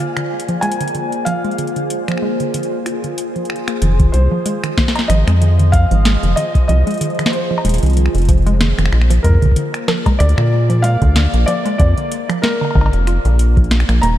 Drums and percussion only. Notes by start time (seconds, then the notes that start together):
0.17 finger snap, closed hi-hat
0.40 closed hi-hat
0.48 closed hi-hat
0.63 closed hi-hat
0.72 closed hi-hat
0.81 closed hi-hat
0.88 closed hi-hat
0.95 closed hi-hat
1.12 closed hi-hat
1.26 closed hi-hat
1.45 closed hi-hat
1.51 closed hi-hat
1.58 closed hi-hat
1.67 closed hi-hat
1.76 closed hi-hat
1.90 closed hi-hat
2.08 finger snap, closed hi-hat
2.12 finger snap
2.18 finger snap
2.40 closed hi-hat
2.54 closed hi-hat
2.63 closed hi-hat
2.86 finger snap, closed hi-hat
3.04 closed hi-hat
3.18 closed hi-hat
3.36 closed hi-hat
3.45 closed hi-hat
3.50 finger snap
3.56 closed hi-hat
3.68 finger snap, closed hi-hat
3.82 closed hi-hat
4.00 kick, closed hi-hat
4.14 closed hi-hat
4.46 closed hi-hat
4.64 finger snap, closed hi-hat
4.78 kick, snare
4.88 snare
4.96 snare, closed hi-hat, cowbell
5.10 finger snap, closed hi-hat
5.28 finger snap, closed hi-hat
5.42 closed hi-hat
5.59 closed hi-hat
5.73 kick, closed hi-hat
5.91 closed hi-hat
6.05 snare, closed hi-hat
6.23 closed hi-hat
6.37 closed hi-hat
6.55 kick, closed hi-hat
6.69 closed hi-hat
6.87 closed hi-hat
6.91 closed hi-hat
6.94 closed hi-hat
6.98 closed hi-hat
7.01 closed hi-hat
7.10 closed hi-hat
7.15 closed hi-hat
7.19 finger snap, closed hi-hat
7.26 snare
7.33 closed hi-hat
7.58 cowbell
7.65 closed hi-hat
7.69 closed hi-hat
7.74 closed hi-hat
7.78 closed hi-hat
7.83 closed hi-hat
7.86 closed hi-hat
7.90 closed hi-hat
7.93 closed hi-hat
7.97 closed hi-hat
8.06 finger snap
8.15 closed hi-hat
8.18 closed hi-hat
8.22 closed hi-hat
8.25 kick, closed hi-hat
8.29 closed hi-hat
8.38 closed hi-hat
8.42 closed hi-hat
8.47 closed hi-hat
8.61 snare, closed hi-hat
8.79 finger snap, closed hi-hat
8.86 finger snap
8.93 finger snap
9.01 finger snap
9.11 closed hi-hat
9.24 kick, closed hi-hat
9.30 kick
9.35 kick
9.42 kick, closed hi-hat
9.46 kick
9.52 kick
9.56 closed hi-hat
9.74 finger snap, closed hi-hat
9.88 snare
10.06 kick, closed hi-hat, cowbell
10.20 finger snap, closed hi-hat
10.29 closed hi-hat
10.38 finger snap
10.70 closed hi-hat
10.84 closed hi-hat
11.02 kick, closed hi-hat
11.16 snare, closed hi-hat
11.34 closed hi-hat
11.48 closed hi-hat
11.66 closed hi-hat
11.80 kick, closed hi-hat
11.98 closed hi-hat
12.12 closed hi-hat
12.30 finger snap, closed hi-hat
12.44 snare, closed hi-hat
12.61 cowbell
12.65 cowbell
12.71 cowbell
12.75 kick, cowbell
12.81 cowbell
12.86 cowbell
12.93 closed hi-hat
13.07 finger snap, closed hi-hat
13.25 closed hi-hat
13.39 closed hi-hat
13.57 kick, closed hi-hat
13.64 closed hi-hat
13.71 snare, closed hi-hat
13.80 finger snap, closed hi-hat
13.89 finger snap, closed hi-hat
14.03 closed hi-hat